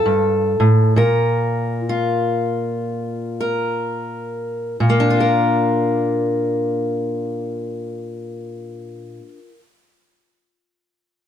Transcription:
Already playing: F4 A4
0.06 G2
0.60 A2
0.96 A#2 A#4
1.89 F4
3.40 A#4
4.80 A#2
4.90 A#3
5.00 D4
5.10 F4
5.20 A#4

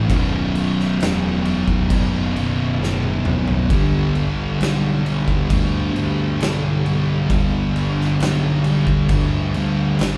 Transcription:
0.08 B0 B1 F#2 B2, kick, crash
0.54 B1 F#2 B2, crash
0.80 snare
0.99 E1 B1 F#2 B2, snare, crash
1.44 B1 F#2 B2, crash
1.68 kick
1.89 F#1 B1 F#2 B2, kick, crash
2.34 B1 F#2 B2, crash
2.79 F#1 B1 F#2 B2, snare
3.03 high tom
3.25 B1 F#2 B2, mid tom
3.48 floor tom
3.70 G1 G2 D3 G3, kick, crash
4.15 G2 D3 G3, crash
4.60 B1 G2 D3 G3, snare, crash
5.05 G2 D3 G3, crash
5.28 kick
5.50 D2 G2 D3 G3, kick, crash
5.95 G2 D3 G3, crash
6.39 B1 G2 D3 G3, snare, crash
6.84 G2 D3 G3, crash
7.29 G1 G2 D3 G3, kick, crash
7.33 G3
7.73 G2 D3 G3, crash
8.01 snare
8.18 B1 G2 D3 G3, crash
8.23 snare
8.63 G2 D3 G3, crash
8.87 kick
9.09 D2 G2 D3 G3, kick, crash
9.54 G2 D3 G3, crash
9.99 G#1 G2 D3 G3, snare, crash

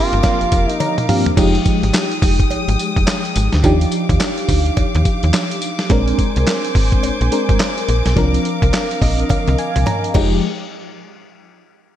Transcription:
Already playing: F3 A#3 C4 D4 F4 G4 A#4 F5 D6
0.13 G1, closed hi-hat
0.23 kick, snare, closed hi-hat, cowbell
0.41 F1, closed hi-hat
0.52 F1, kick, closed hi-hat, tambourine
0.70 D#4, closed hi-hat
0.80 A#5, closed hi-hat, high tom, cowbell
0.98 closed hi-hat, mid tom
1.08 F3 A#3 C4 D4 G4 F5, mid tom, open hi-hat
1.26 closed hi-hat, floor tom
1.36 F1 F3 G#3 D#4 G4 G5 D#6, kick, closed hi-hat, crash, tambourine, cowbell
1.55 closed hi-hat
1.65 kick, closed hi-hat, tambourine
1.83 G#1, closed hi-hat
1.93 snare, clap, closed hi-hat, tambourine, cowbell
2.12 closed hi-hat
2.22 F1, kick, open hi-hat, tambourine
2.40 kick, closed hi-hat
2.51 G#1, closed hi-hat, cowbell
2.68 G#1, closed hi-hat
2.79 closed hi-hat, tambourine
2.96 F1, kick, closed hi-hat
3.07 snare, clap, closed hi-hat, tambourine, cowbell
3.25 closed hi-hat
3.36 G#1, closed hi-hat, tambourine
3.52 D2, snare, closed hi-hat
3.63 D#2 F3 D4 D#4 G4 F5 D6, kick, closed hi-hat, tambourine, cowbell
3.81 closed hi-hat
3.92 closed hi-hat, tambourine
4.09 D#2, kick, closed hi-hat
4.20 snare, clap, closed hi-hat, tambourine, cowbell
4.38 closed hi-hat
4.49 D2, kick, open hi-hat, tambourine
4.66 closed hi-hat
4.77 D#2, kick, closed hi-hat, cowbell
4.95 D#2, closed hi-hat
5.05 kick, closed hi-hat, tambourine
5.23 D#2, closed hi-hat
5.33 snare, clap, closed hi-hat, tambourine, cowbell
5.51 closed hi-hat
5.62 closed hi-hat, tambourine
5.79 snare, closed hi-hat
5.89 A#1 G#3 C4 D4 A#4 C5 G#5, kick, closed hi-hat, cowbell
6.08 closed hi-hat
6.19 kick, closed hi-hat
6.36 C2, closed hi-hat
6.47 snare, clap, closed hi-hat, cowbell
6.65 closed hi-hat
6.75 G#1, kick, open hi-hat
6.92 kick, closed hi-hat
7.03 A#1, closed hi-hat, cowbell
7.21 A#1, closed hi-hat
7.31 G#3 C4 D4 A#4, closed hi-hat
7.49 G#1, kick, closed hi-hat
7.60 snare, clap, closed hi-hat, cowbell
7.78 closed hi-hat
7.88 A#1, closed hi-hat
8.06 B1, snare, closed hi-hat
8.16 C2 F3 C4 D4 A#4 F5, kick, closed hi-hat, cowbell
8.34 closed hi-hat
8.45 closed hi-hat
8.62 C2, kick, closed hi-hat
8.73 snare, clap, closed hi-hat, cowbell
8.91 closed hi-hat
9.02 A#1 D#5, kick, open hi-hat
9.19 closed hi-hat
9.29 C2 F5, kick, closed hi-hat, high tom, cowbell
9.48 C2, closed hi-hat, high tom
9.58 G#5, closed hi-hat
9.76 C2, closed hi-hat, mid tom
9.86 A#5, closed hi-hat, mid tom, cowbell
10.04 closed hi-hat
10.14 F1 F3 G#3 D#4 G4 G#4 G5, kick, crash, cowbell

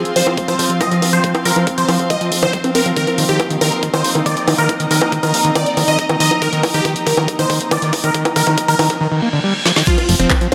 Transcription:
Already playing: F3 C4 F4 F5 C6
0.05 closed hi-hat
0.16 C2 F3 C5, open hi-hat
0.27 F1 F3, high bongo
0.38 kick, closed hi-hat
0.48 F3 C5, closed hi-hat, high bongo
0.59 F1 F3, open hi-hat
0.70 F1, closed hi-hat
0.81 F3 D#5, kick, closed hi-hat, high bongo
0.91 G1 F3, closed hi-hat
1.02 G1, open hi-hat, high bongo
1.13 G1 F3 C5, closed hi-hat
1.24 F3, kick, closed hi-hat
1.35 closed hi-hat, high bongo
1.45 F1 F3 A#4, open hi-hat
1.56 F1 F3, closed hi-hat, high bongo
1.67 kick, closed hi-hat
1.78 F3 C5, closed hi-hat
1.89 F1 F3, open hi-hat, high bongo
1.99 F1, closed hi-hat
2.10 F3 D#5, kick, closed hi-hat, high bongo
2.21 F3, closed hi-hat
2.32 D#1, open hi-hat
2.43 C2 D#3 C5, high bongo
2.53 G3, kick, closed hi-hat
2.64 F1 C4, closed hi-hat, high bongo
2.75 F1 C4 A#4, open hi-hat
2.86 F1 F3, closed hi-hat
2.96 D#3 A#3 A#4, kick, closed hi-hat
3.03 D#4
3.07 closed hi-hat, high bongo
3.18 D#1 D#3, open hi-hat
3.29 D#1 D#3 G4, closed hi-hat
3.40 kick, closed hi-hat, high bongo
3.50 D#3, closed hi-hat
3.61 A#1 D#3 A#4 D#5, open hi-hat, high bongo
3.72 D#1, closed hi-hat
3.83 D#3, kick, closed hi-hat
3.94 D#3 C5, closed hi-hat, high bongo
4.04 D#1, open hi-hat
4.15 D#1 D#3, closed hi-hat, high bongo
4.24 D#3 D5 A#5, kick, closed hi-hat
4.37 F1, closed hi-hat
4.48 F1 D#3, open hi-hat, high bongo
4.58 F1 D#3 A#4, closed hi-hat
4.69 kick, closed hi-hat, high bongo
4.80 D#3, closed hi-hat
4.91 D#1 D#3 A#4, open hi-hat
5.02 closed hi-hat, high bongo
5.12 D#3, kick, closed hi-hat
5.23 D#3 A#4, closed hi-hat, high bongo
5.34 D#1, open hi-hat
5.45 D#3, closed hi-hat
5.55 D#3 D5, kick, closed hi-hat, high bongo
5.66 closed hi-hat
5.77 A#1 D#3, open hi-hat, high bongo
5.88 A#1 D#3 D#5, closed hi-hat
5.99 kick, closed hi-hat
6.09 D#1 D#3, closed hi-hat, high bongo
6.20 D#3 D#5, open hi-hat
6.31 D#1, closed hi-hat, high bongo
6.42 D#3 A#4, kick, closed hi-hat
6.53 D#3, closed hi-hat
6.63 D#1, kick, open hi-hat, high bongo
6.74 D#3 G4, closed hi-hat
6.85 D#3, kick, closed hi-hat, high bongo
6.96 closed hi-hat
7.07 A#1 D#3 A#4, kick, open hi-hat
7.17 D#3, closed hi-hat, high bongo
7.28 kick, closed hi-hat
7.39 D#3 C5, closed hi-hat, high bongo
7.50 D#1 D#3, kick, open hi-hat
7.61 D#1, closed hi-hat
7.71 D#3 D5, kick, closed hi-hat, high bongo
7.82 F1 D#3, closed hi-hat
7.93 F1, kick, open hi-hat, high bongo
8.04 F1 D#3 A#4, closed hi-hat
8.14 D#3, kick, closed hi-hat
8.25 kick, closed hi-hat, high bongo
8.36 D#1 D#3 A#4, kick, open hi-hat
8.47 D#1 D#3, kick, closed hi-hat, high bongo
8.58 kick, closed hi-hat
8.68 D#3 A#4, kick, closed hi-hat
8.79 D#1 D#3, kick, open hi-hat, high bongo
8.90 D#1, kick, closed hi-hat
9.01 D#3, reverse cymbal
9.12 D#3
9.22 A#3
9.33 D3
9.44 G3
9.66 F3, snare
9.76 D#3, snare
9.87 F3 C4 F4, kick, closed hi-hat, crash
9.96 F4, closed hi-hat, high bongo
10.09 F1 F3, open hi-hat
10.20 F1 F3 C4, closed hi-hat
10.30 kick, clap, closed hi-hat, high bongo
10.41 F3, closed hi-hat
10.47 F5

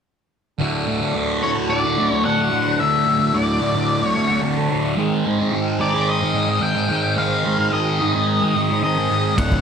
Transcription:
0.59 D2 A2 D3 D4 F#4 A4
0.86 D2 A2 D3
1.00 A2 D3
1.15 D2 A2 D3
1.43 D2 A2 D3 C#5
1.55 A2 D3
1.70 D5
1.83 A2 D3
1.96 D2 A2 D3
2.10 A2 D3 C#5
2.24 D2 A2 D3 F#5
2.37 A2 D3
2.51 D2 A2 D3
2.79 D2 A2 D3 E5
3.06 D2 A2 D3
3.19 A2 D3
3.33 D2 A2 D3 D5
3.60 D2 A2 D3
3.74 A2 D3
4.01 A2 D3 C#5
4.15 D2 A2 D3
4.28 A2 D3
4.41 D2 A2 D3
4.56 A2 D3
4.70 D2 A2 D3
4.96 G#2 D#3 G#3 C4 D#4 G#4
5.25 G#2 D#3 G#3
5.38 D#3 G#3
5.51 G#2 D#3 G#3
5.79 G#2 D#3 G#3 D5
5.94 D#3 G#3
6.09 D#5
6.21 D#3 G#3
6.34 G#2 D#3 G#3
6.47 D#3 G#3
6.60 G#2 D#3 G#3 G5
6.74 D#3 G#3
6.89 G#2 D#3 G#3
7.16 G#2 D#3 G#3 F5
7.44 G#2 D#3 G#3
7.58 D#3 G#3
7.72 G#2 D#3 G#3 D#5
8.00 G#2 D#3 G#3
8.13 D#3 G#3
8.41 D#3 G#3
8.54 G#2 D#3 G#3
8.70 D#3 G#3
8.82 G#2 D#3 G#3 D#5
8.96 D#3 G#3
9.09 G#2 D#3 G#3
9.36 D1 D2 A2 D3 D4 F#4 A4 F#5, kick, ride
9.52 kick, high conga

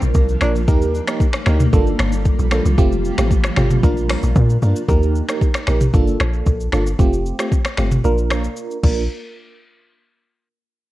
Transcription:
Already playing: A#3 D4 F4 A#4
0.02 A#1, shaker
0.14 C2, kick, shaker
0.29 shaker
0.41 A#1 A#3 D4 F4 A#4, finger snap, cross-stick, shaker
0.55 shaker
0.67 D#2 G3 A#3 D#4 G4 A#4, kick, shaker
0.82 shaker
0.94 shaker
1.07 A#3 D#4 G4 A#4, finger snap, cross-stick, shaker
1.20 kick, shaker
1.33 finger snap, cross-stick, shaker
1.46 D2 A#3 D#4 G4 A#4, finger snap, cross-stick, shaker
1.60 mid tom, shaker
1.73 G1 F3 A#3 D4 F4 A4, kick, shaker
1.87 shaker
1.99 G1, finger snap, cross-stick, shaker
2.12 shaker
2.25 kick, shaker
2.39 A#1, shaker
2.51 A#3 D4 F4 A4, finger snap, cross-stick, shaker
2.66 C2, shaker
2.78 F1 A3 C4 F4 G4, kick, shaker
2.92 shaker
3.05 shaker
3.18 A1 A3 C4 F4 G4, finger snap, cross-stick, shaker
3.31 kick, shaker
3.44 finger snap, cross-stick, shaker
3.56 G1 A3 C4 F4 G4, finger snap, cross-stick, mid tom, shaker
3.71 mid tom, shaker
3.83 A#1 A#3 D4 F4 A#4, kick, shaker
3.97 shaker
4.10 finger snap, cross-stick, open hi-hat, shaker
4.23 A#1, shaker
4.36 A#2, kick, shaker
4.50 shaker
4.62 G2 A#3 D4 F4 A#4, shaker
4.76 shaker
4.88 D#2 A#3 D#4 G4 A#4, kick, shaker
5.03 shaker
5.16 shaker
5.28 A#3 D#4 G4 A#4, finger snap, cross-stick, shaker
5.41 kick, shaker
5.54 finger snap, cross-stick, shaker
5.67 A#1 A#3 D#4 G4 A#4, finger snap, cross-stick, shaker
5.81 mid tom, shaker
5.94 G1 A#3 D4 F4 A4, kick, shaker
6.07 shaker
6.20 A#1, finger snap, cross-stick, shaker
6.33 shaker
6.46 A#1, kick, shaker
6.60 shaker
6.72 G1 A#3 D4 F4 A4, finger snap, cross-stick, shaker
6.87 shaker
6.99 F1 A3 C4 F4 G4, kick, shaker
7.13 shaker
7.26 shaker
7.39 A3 C4 F4 G4, finger snap, cross-stick, shaker
7.52 kick, shaker
7.65 finger snap, cross-stick, shaker
7.77 G1 A3 C4 F4 G4, finger snap, cross-stick, shaker
7.92 mid tom, shaker
8.04 A#1 A#3 D4 F4 A#4, shaker
8.18 shaker
8.31 finger snap, cross-stick, shaker
8.44 shaker
8.56 shaker
8.71 shaker
8.83 A#1 A#3 D4 F4 A#4, kick, crash

